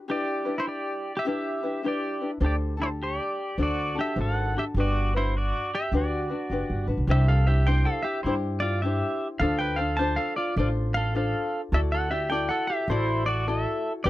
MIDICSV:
0, 0, Header, 1, 4, 480
1, 0, Start_track
1, 0, Tempo, 581959
1, 70, Time_signature, 4, 2, 24, 8
1, 11628, End_track
2, 0, Start_track
2, 0, Title_t, "Pedal steel guitar"
2, 0, Program_c, 0, 26
2, 81, Note_on_c, 0, 67, 70
2, 93, Note_on_c, 0, 74, 87
2, 443, Note_off_c, 0, 67, 0
2, 479, Note_on_c, 0, 64, 51
2, 488, Note_off_c, 0, 74, 0
2, 492, Note_on_c, 0, 72, 72
2, 554, Note_off_c, 0, 64, 0
2, 556, Note_on_c, 0, 67, 63
2, 562, Note_off_c, 0, 72, 0
2, 565, Note_on_c, 0, 74, 82
2, 922, Note_off_c, 0, 67, 0
2, 963, Note_on_c, 0, 67, 66
2, 966, Note_off_c, 0, 74, 0
2, 981, Note_on_c, 0, 76, 81
2, 1037, Note_off_c, 0, 67, 0
2, 1054, Note_off_c, 0, 76, 0
2, 1058, Note_on_c, 0, 67, 78
2, 1062, Note_on_c, 0, 76, 98
2, 1496, Note_off_c, 0, 67, 0
2, 1537, Note_on_c, 0, 67, 65
2, 1545, Note_off_c, 0, 76, 0
2, 1550, Note_on_c, 0, 74, 81
2, 1895, Note_off_c, 0, 67, 0
2, 1902, Note_off_c, 0, 74, 0
2, 2017, Note_on_c, 0, 67, 68
2, 2030, Note_on_c, 0, 74, 76
2, 2098, Note_off_c, 0, 67, 0
2, 2109, Note_off_c, 0, 74, 0
2, 2323, Note_on_c, 0, 64, 53
2, 2336, Note_on_c, 0, 72, 70
2, 2368, Note_off_c, 0, 64, 0
2, 2379, Note_off_c, 0, 72, 0
2, 2496, Note_on_c, 0, 67, 63
2, 2503, Note_on_c, 0, 74, 84
2, 2938, Note_off_c, 0, 67, 0
2, 2982, Note_off_c, 0, 74, 0
2, 2991, Note_on_c, 0, 74, 85
2, 2992, Note_on_c, 0, 66, 65
2, 3265, Note_off_c, 0, 66, 0
2, 3290, Note_on_c, 0, 67, 65
2, 3295, Note_off_c, 0, 74, 0
2, 3305, Note_on_c, 0, 76, 86
2, 3444, Note_off_c, 0, 67, 0
2, 3451, Note_off_c, 0, 76, 0
2, 3470, Note_on_c, 0, 69, 72
2, 3477, Note_on_c, 0, 78, 79
2, 3745, Note_off_c, 0, 69, 0
2, 3778, Note_off_c, 0, 78, 0
2, 3778, Note_on_c, 0, 67, 61
2, 3787, Note_on_c, 0, 76, 69
2, 3822, Note_off_c, 0, 67, 0
2, 3830, Note_off_c, 0, 76, 0
2, 3958, Note_on_c, 0, 66, 61
2, 3962, Note_on_c, 0, 74, 82
2, 4230, Note_off_c, 0, 66, 0
2, 4257, Note_off_c, 0, 74, 0
2, 4260, Note_on_c, 0, 64, 51
2, 4267, Note_on_c, 0, 72, 63
2, 4410, Note_off_c, 0, 64, 0
2, 4427, Note_on_c, 0, 66, 61
2, 4430, Note_off_c, 0, 72, 0
2, 4438, Note_on_c, 0, 74, 78
2, 4704, Note_off_c, 0, 66, 0
2, 4739, Note_off_c, 0, 74, 0
2, 4739, Note_on_c, 0, 67, 60
2, 4744, Note_on_c, 0, 76, 78
2, 4890, Note_off_c, 0, 67, 0
2, 4908, Note_off_c, 0, 76, 0
2, 4918, Note_on_c, 0, 66, 59
2, 4920, Note_on_c, 0, 74, 72
2, 5658, Note_off_c, 0, 66, 0
2, 5659, Note_off_c, 0, 74, 0
2, 5867, Note_on_c, 0, 76, 85
2, 5871, Note_on_c, 0, 67, 60
2, 6004, Note_off_c, 0, 67, 0
2, 6008, Note_on_c, 0, 77, 86
2, 6012, Note_on_c, 0, 69, 60
2, 6016, Note_off_c, 0, 76, 0
2, 6150, Note_off_c, 0, 69, 0
2, 6160, Note_on_c, 0, 76, 69
2, 6163, Note_off_c, 0, 77, 0
2, 6168, Note_on_c, 0, 67, 62
2, 6323, Note_on_c, 0, 79, 94
2, 6324, Note_off_c, 0, 67, 0
2, 6333, Note_on_c, 0, 72, 70
2, 6336, Note_off_c, 0, 76, 0
2, 6474, Note_off_c, 0, 72, 0
2, 6478, Note_on_c, 0, 77, 90
2, 6484, Note_off_c, 0, 79, 0
2, 6485, Note_on_c, 0, 69, 70
2, 6619, Note_on_c, 0, 76, 84
2, 6626, Note_off_c, 0, 69, 0
2, 6635, Note_on_c, 0, 67, 68
2, 6638, Note_off_c, 0, 77, 0
2, 6785, Note_off_c, 0, 76, 0
2, 6789, Note_on_c, 0, 72, 91
2, 6796, Note_off_c, 0, 67, 0
2, 6796, Note_on_c, 0, 64, 74
2, 6874, Note_off_c, 0, 72, 0
2, 6881, Note_off_c, 0, 64, 0
2, 7094, Note_on_c, 0, 74, 85
2, 7111, Note_on_c, 0, 65, 68
2, 7274, Note_off_c, 0, 65, 0
2, 7275, Note_on_c, 0, 76, 93
2, 7282, Note_off_c, 0, 74, 0
2, 7286, Note_on_c, 0, 67, 67
2, 7646, Note_off_c, 0, 76, 0
2, 7652, Note_off_c, 0, 67, 0
2, 7749, Note_on_c, 0, 77, 95
2, 7762, Note_on_c, 0, 69, 68
2, 7906, Note_off_c, 0, 69, 0
2, 7907, Note_on_c, 0, 79, 99
2, 7915, Note_off_c, 0, 77, 0
2, 7922, Note_on_c, 0, 71, 72
2, 8052, Note_on_c, 0, 77, 88
2, 8063, Note_off_c, 0, 71, 0
2, 8064, Note_on_c, 0, 69, 58
2, 8070, Note_off_c, 0, 79, 0
2, 8221, Note_on_c, 0, 81, 98
2, 8228, Note_off_c, 0, 69, 0
2, 8239, Note_on_c, 0, 72, 71
2, 8240, Note_off_c, 0, 77, 0
2, 8383, Note_on_c, 0, 77, 96
2, 8384, Note_off_c, 0, 72, 0
2, 8391, Note_off_c, 0, 81, 0
2, 8396, Note_on_c, 0, 69, 70
2, 8532, Note_off_c, 0, 77, 0
2, 8539, Note_off_c, 0, 69, 0
2, 8548, Note_on_c, 0, 74, 83
2, 8560, Note_on_c, 0, 65, 67
2, 8713, Note_off_c, 0, 74, 0
2, 8716, Note_off_c, 0, 65, 0
2, 8723, Note_on_c, 0, 74, 90
2, 8735, Note_on_c, 0, 65, 68
2, 8805, Note_off_c, 0, 74, 0
2, 8816, Note_off_c, 0, 65, 0
2, 9026, Note_on_c, 0, 77, 94
2, 9048, Note_on_c, 0, 69, 66
2, 9199, Note_off_c, 0, 77, 0
2, 9200, Note_off_c, 0, 69, 0
2, 9209, Note_on_c, 0, 77, 89
2, 9221, Note_on_c, 0, 69, 75
2, 9570, Note_off_c, 0, 77, 0
2, 9576, Note_off_c, 0, 69, 0
2, 9686, Note_on_c, 0, 76, 92
2, 9699, Note_on_c, 0, 69, 67
2, 9727, Note_off_c, 0, 76, 0
2, 9740, Note_off_c, 0, 69, 0
2, 9832, Note_on_c, 0, 78, 87
2, 9852, Note_on_c, 0, 69, 71
2, 9985, Note_off_c, 0, 69, 0
2, 9985, Note_on_c, 0, 76, 80
2, 9989, Note_off_c, 0, 78, 0
2, 9993, Note_on_c, 0, 67, 66
2, 10142, Note_on_c, 0, 79, 90
2, 10150, Note_off_c, 0, 67, 0
2, 10157, Note_off_c, 0, 76, 0
2, 10161, Note_on_c, 0, 74, 74
2, 10292, Note_off_c, 0, 79, 0
2, 10300, Note_on_c, 0, 78, 94
2, 10302, Note_off_c, 0, 74, 0
2, 10314, Note_on_c, 0, 69, 73
2, 10453, Note_on_c, 0, 76, 90
2, 10455, Note_off_c, 0, 69, 0
2, 10463, Note_off_c, 0, 78, 0
2, 10473, Note_on_c, 0, 67, 61
2, 10630, Note_off_c, 0, 67, 0
2, 10637, Note_off_c, 0, 76, 0
2, 10639, Note_on_c, 0, 72, 90
2, 10651, Note_on_c, 0, 64, 70
2, 10929, Note_off_c, 0, 64, 0
2, 10937, Note_on_c, 0, 74, 85
2, 10952, Note_on_c, 0, 66, 63
2, 10953, Note_off_c, 0, 72, 0
2, 11100, Note_off_c, 0, 74, 0
2, 11108, Note_off_c, 0, 66, 0
2, 11118, Note_on_c, 0, 76, 84
2, 11130, Note_on_c, 0, 69, 65
2, 11482, Note_off_c, 0, 76, 0
2, 11488, Note_off_c, 0, 69, 0
2, 11581, Note_on_c, 0, 74, 82
2, 11596, Note_on_c, 0, 67, 68
2, 11628, Note_off_c, 0, 67, 0
2, 11628, Note_off_c, 0, 74, 0
2, 11628, End_track
3, 0, Start_track
3, 0, Title_t, "Ukulele"
3, 0, Program_c, 1, 24
3, 66, Note_on_c, 1, 67, 58
3, 72, Note_on_c, 1, 62, 66
3, 76, Note_on_c, 1, 64, 66
3, 79, Note_on_c, 1, 71, 64
3, 361, Note_off_c, 1, 71, 0
3, 371, Note_off_c, 1, 64, 0
3, 371, Note_on_c, 1, 71, 51
3, 376, Note_off_c, 1, 67, 0
3, 379, Note_off_c, 1, 62, 0
3, 381, Note_on_c, 1, 64, 45
3, 389, Note_on_c, 1, 62, 42
3, 1030, Note_on_c, 1, 67, 72
3, 1031, Note_off_c, 1, 71, 0
3, 1032, Note_off_c, 1, 64, 0
3, 1036, Note_off_c, 1, 62, 0
3, 1039, Note_on_c, 1, 62, 76
3, 1041, Note_on_c, 1, 64, 76
3, 1045, Note_on_c, 1, 71, 73
3, 1334, Note_off_c, 1, 71, 0
3, 1340, Note_off_c, 1, 67, 0
3, 1342, Note_off_c, 1, 64, 0
3, 1344, Note_on_c, 1, 71, 54
3, 1345, Note_off_c, 1, 62, 0
3, 1352, Note_on_c, 1, 64, 48
3, 1358, Note_on_c, 1, 62, 43
3, 1508, Note_off_c, 1, 62, 0
3, 1510, Note_on_c, 1, 67, 50
3, 1512, Note_off_c, 1, 64, 0
3, 1518, Note_off_c, 1, 71, 0
3, 1518, Note_on_c, 1, 62, 60
3, 1522, Note_on_c, 1, 64, 62
3, 1527, Note_on_c, 1, 71, 63
3, 1812, Note_off_c, 1, 71, 0
3, 1818, Note_off_c, 1, 64, 0
3, 1821, Note_on_c, 1, 71, 41
3, 1822, Note_off_c, 1, 67, 0
3, 1826, Note_off_c, 1, 62, 0
3, 1828, Note_on_c, 1, 64, 39
3, 1835, Note_on_c, 1, 62, 36
3, 1977, Note_off_c, 1, 62, 0
3, 1979, Note_off_c, 1, 71, 0
3, 1982, Note_on_c, 1, 72, 72
3, 1987, Note_on_c, 1, 62, 66
3, 1988, Note_off_c, 1, 64, 0
3, 1992, Note_on_c, 1, 67, 71
3, 1993, Note_on_c, 1, 69, 75
3, 2275, Note_off_c, 1, 69, 0
3, 2281, Note_off_c, 1, 72, 0
3, 2283, Note_off_c, 1, 67, 0
3, 2285, Note_on_c, 1, 69, 53
3, 2292, Note_on_c, 1, 67, 51
3, 2293, Note_off_c, 1, 62, 0
3, 2303, Note_on_c, 1, 62, 42
3, 2949, Note_off_c, 1, 69, 0
3, 2952, Note_on_c, 1, 72, 68
3, 2954, Note_off_c, 1, 62, 0
3, 2957, Note_off_c, 1, 67, 0
3, 2958, Note_on_c, 1, 62, 72
3, 2963, Note_on_c, 1, 66, 76
3, 2968, Note_on_c, 1, 69, 77
3, 3250, Note_off_c, 1, 69, 0
3, 3256, Note_off_c, 1, 72, 0
3, 3258, Note_off_c, 1, 66, 0
3, 3260, Note_on_c, 1, 69, 56
3, 3265, Note_off_c, 1, 62, 0
3, 3268, Note_on_c, 1, 66, 43
3, 3275, Note_on_c, 1, 62, 44
3, 3427, Note_off_c, 1, 69, 0
3, 3431, Note_off_c, 1, 62, 0
3, 3431, Note_on_c, 1, 72, 54
3, 3434, Note_off_c, 1, 66, 0
3, 3441, Note_on_c, 1, 62, 49
3, 3444, Note_on_c, 1, 66, 57
3, 3447, Note_on_c, 1, 69, 59
3, 3739, Note_off_c, 1, 69, 0
3, 3746, Note_off_c, 1, 72, 0
3, 3747, Note_off_c, 1, 66, 0
3, 3749, Note_on_c, 1, 69, 44
3, 3751, Note_off_c, 1, 62, 0
3, 3757, Note_on_c, 1, 66, 42
3, 3764, Note_on_c, 1, 62, 40
3, 3925, Note_off_c, 1, 62, 0
3, 3925, Note_off_c, 1, 69, 0
3, 3926, Note_off_c, 1, 66, 0
3, 3928, Note_on_c, 1, 67, 59
3, 3935, Note_on_c, 1, 62, 74
3, 3936, Note_on_c, 1, 66, 75
3, 3939, Note_on_c, 1, 71, 81
3, 4230, Note_off_c, 1, 71, 0
3, 4236, Note_off_c, 1, 67, 0
3, 4239, Note_off_c, 1, 62, 0
3, 4240, Note_off_c, 1, 66, 0
3, 4240, Note_on_c, 1, 71, 49
3, 4249, Note_on_c, 1, 66, 45
3, 4259, Note_on_c, 1, 62, 40
3, 4888, Note_off_c, 1, 62, 0
3, 4888, Note_off_c, 1, 66, 0
3, 4889, Note_on_c, 1, 67, 69
3, 4892, Note_off_c, 1, 71, 0
3, 4892, Note_on_c, 1, 62, 76
3, 4898, Note_on_c, 1, 66, 83
3, 4902, Note_on_c, 1, 71, 76
3, 5181, Note_off_c, 1, 71, 0
3, 5191, Note_on_c, 1, 71, 48
3, 5192, Note_off_c, 1, 66, 0
3, 5196, Note_off_c, 1, 67, 0
3, 5198, Note_off_c, 1, 62, 0
3, 5202, Note_on_c, 1, 66, 49
3, 5211, Note_on_c, 1, 62, 44
3, 5366, Note_off_c, 1, 62, 0
3, 5367, Note_off_c, 1, 71, 0
3, 5368, Note_off_c, 1, 66, 0
3, 5371, Note_on_c, 1, 67, 49
3, 5376, Note_on_c, 1, 62, 54
3, 5378, Note_on_c, 1, 66, 53
3, 5383, Note_on_c, 1, 71, 66
3, 5661, Note_off_c, 1, 71, 0
3, 5671, Note_on_c, 1, 71, 44
3, 5673, Note_off_c, 1, 66, 0
3, 5677, Note_off_c, 1, 67, 0
3, 5678, Note_off_c, 1, 62, 0
3, 5683, Note_on_c, 1, 66, 50
3, 5687, Note_on_c, 1, 62, 37
3, 5835, Note_off_c, 1, 62, 0
3, 5839, Note_on_c, 1, 67, 63
3, 5840, Note_off_c, 1, 66, 0
3, 5844, Note_on_c, 1, 64, 73
3, 5845, Note_on_c, 1, 62, 67
3, 5847, Note_off_c, 1, 71, 0
3, 5850, Note_on_c, 1, 72, 74
3, 6141, Note_off_c, 1, 72, 0
3, 6151, Note_off_c, 1, 67, 0
3, 6151, Note_on_c, 1, 72, 47
3, 6154, Note_off_c, 1, 62, 0
3, 6154, Note_off_c, 1, 64, 0
3, 6164, Note_on_c, 1, 64, 40
3, 6170, Note_on_c, 1, 62, 36
3, 6319, Note_on_c, 1, 67, 60
3, 6320, Note_off_c, 1, 62, 0
3, 6324, Note_off_c, 1, 64, 0
3, 6327, Note_off_c, 1, 72, 0
3, 6330, Note_on_c, 1, 62, 57
3, 6334, Note_on_c, 1, 64, 60
3, 6338, Note_on_c, 1, 72, 65
3, 6801, Note_off_c, 1, 67, 0
3, 6806, Note_off_c, 1, 64, 0
3, 6809, Note_off_c, 1, 62, 0
3, 6811, Note_on_c, 1, 67, 71
3, 6812, Note_on_c, 1, 62, 77
3, 6816, Note_on_c, 1, 64, 71
3, 6820, Note_off_c, 1, 72, 0
3, 6823, Note_on_c, 1, 72, 73
3, 7276, Note_off_c, 1, 67, 0
3, 7286, Note_on_c, 1, 67, 53
3, 7287, Note_off_c, 1, 64, 0
3, 7289, Note_off_c, 1, 62, 0
3, 7292, Note_on_c, 1, 62, 52
3, 7297, Note_on_c, 1, 64, 61
3, 7301, Note_off_c, 1, 72, 0
3, 7304, Note_on_c, 1, 72, 60
3, 7763, Note_off_c, 1, 67, 0
3, 7764, Note_off_c, 1, 62, 0
3, 7766, Note_on_c, 1, 69, 69
3, 7768, Note_on_c, 1, 62, 66
3, 7769, Note_off_c, 1, 64, 0
3, 7771, Note_off_c, 1, 72, 0
3, 7773, Note_on_c, 1, 65, 77
3, 7775, Note_on_c, 1, 72, 70
3, 8055, Note_off_c, 1, 72, 0
3, 8065, Note_off_c, 1, 65, 0
3, 8065, Note_on_c, 1, 72, 47
3, 8072, Note_off_c, 1, 69, 0
3, 8073, Note_off_c, 1, 62, 0
3, 8075, Note_on_c, 1, 65, 40
3, 8084, Note_on_c, 1, 62, 36
3, 8232, Note_off_c, 1, 62, 0
3, 8239, Note_on_c, 1, 69, 53
3, 8240, Note_off_c, 1, 65, 0
3, 8241, Note_off_c, 1, 72, 0
3, 8241, Note_on_c, 1, 62, 62
3, 8250, Note_on_c, 1, 65, 72
3, 8254, Note_on_c, 1, 72, 66
3, 8718, Note_off_c, 1, 69, 0
3, 8721, Note_off_c, 1, 65, 0
3, 8721, Note_on_c, 1, 69, 64
3, 8727, Note_off_c, 1, 62, 0
3, 8727, Note_off_c, 1, 72, 0
3, 8730, Note_on_c, 1, 62, 78
3, 8731, Note_on_c, 1, 65, 69
3, 8737, Note_on_c, 1, 72, 89
3, 9191, Note_off_c, 1, 65, 0
3, 9191, Note_off_c, 1, 69, 0
3, 9194, Note_on_c, 1, 69, 59
3, 9196, Note_off_c, 1, 62, 0
3, 9199, Note_off_c, 1, 72, 0
3, 9199, Note_on_c, 1, 62, 57
3, 9201, Note_on_c, 1, 65, 62
3, 9209, Note_on_c, 1, 72, 61
3, 9668, Note_off_c, 1, 72, 0
3, 9671, Note_off_c, 1, 69, 0
3, 9671, Note_on_c, 1, 69, 67
3, 9672, Note_off_c, 1, 65, 0
3, 9675, Note_on_c, 1, 64, 73
3, 9676, Note_off_c, 1, 62, 0
3, 9679, Note_on_c, 1, 66, 78
3, 9684, Note_on_c, 1, 74, 72
3, 9975, Note_off_c, 1, 74, 0
3, 9980, Note_off_c, 1, 66, 0
3, 9981, Note_off_c, 1, 69, 0
3, 9983, Note_off_c, 1, 64, 0
3, 9985, Note_on_c, 1, 74, 47
3, 9990, Note_on_c, 1, 66, 45
3, 10003, Note_on_c, 1, 64, 41
3, 10146, Note_off_c, 1, 74, 0
3, 10148, Note_off_c, 1, 64, 0
3, 10150, Note_on_c, 1, 69, 57
3, 10154, Note_off_c, 1, 66, 0
3, 10158, Note_on_c, 1, 64, 66
3, 10164, Note_on_c, 1, 66, 62
3, 10171, Note_on_c, 1, 74, 70
3, 10623, Note_off_c, 1, 69, 0
3, 10629, Note_off_c, 1, 64, 0
3, 10633, Note_off_c, 1, 66, 0
3, 10633, Note_on_c, 1, 69, 74
3, 10638, Note_on_c, 1, 64, 76
3, 10642, Note_on_c, 1, 66, 81
3, 10645, Note_off_c, 1, 74, 0
3, 10648, Note_on_c, 1, 74, 83
3, 11103, Note_off_c, 1, 69, 0
3, 11107, Note_off_c, 1, 64, 0
3, 11113, Note_on_c, 1, 69, 55
3, 11116, Note_off_c, 1, 66, 0
3, 11117, Note_on_c, 1, 64, 56
3, 11126, Note_off_c, 1, 74, 0
3, 11126, Note_on_c, 1, 66, 65
3, 11129, Note_on_c, 1, 74, 65
3, 11588, Note_off_c, 1, 64, 0
3, 11591, Note_on_c, 1, 71, 70
3, 11592, Note_off_c, 1, 66, 0
3, 11593, Note_off_c, 1, 69, 0
3, 11594, Note_off_c, 1, 74, 0
3, 11595, Note_on_c, 1, 62, 66
3, 11597, Note_on_c, 1, 67, 83
3, 11598, Note_on_c, 1, 74, 81
3, 11628, Note_off_c, 1, 62, 0
3, 11628, Note_off_c, 1, 67, 0
3, 11628, Note_off_c, 1, 71, 0
3, 11628, Note_off_c, 1, 74, 0
3, 11628, End_track
4, 0, Start_track
4, 0, Title_t, "Upright bass"
4, 0, Program_c, 2, 32
4, 1985, Note_on_c, 2, 38, 92
4, 2617, Note_off_c, 2, 38, 0
4, 2952, Note_on_c, 2, 38, 84
4, 3269, Note_off_c, 2, 38, 0
4, 3432, Note_on_c, 2, 32, 84
4, 3750, Note_off_c, 2, 32, 0
4, 3913, Note_on_c, 2, 31, 90
4, 4543, Note_off_c, 2, 31, 0
4, 4880, Note_on_c, 2, 38, 84
4, 5196, Note_off_c, 2, 38, 0
4, 5359, Note_on_c, 2, 30, 68
4, 5502, Note_off_c, 2, 30, 0
4, 5524, Note_on_c, 2, 31, 71
4, 5662, Note_off_c, 2, 31, 0
4, 5668, Note_on_c, 2, 33, 70
4, 5747, Note_off_c, 2, 33, 0
4, 5752, Note_on_c, 2, 35, 68
4, 5830, Note_off_c, 2, 35, 0
4, 5834, Note_on_c, 2, 36, 94
4, 6463, Note_off_c, 2, 36, 0
4, 6800, Note_on_c, 2, 43, 80
4, 7425, Note_off_c, 2, 43, 0
4, 7752, Note_on_c, 2, 38, 93
4, 8379, Note_off_c, 2, 38, 0
4, 8713, Note_on_c, 2, 33, 87
4, 9338, Note_off_c, 2, 33, 0
4, 9667, Note_on_c, 2, 38, 90
4, 10293, Note_off_c, 2, 38, 0
4, 10621, Note_on_c, 2, 33, 88
4, 11249, Note_off_c, 2, 33, 0
4, 11592, Note_on_c, 2, 31, 98
4, 11628, Note_off_c, 2, 31, 0
4, 11628, End_track
0, 0, End_of_file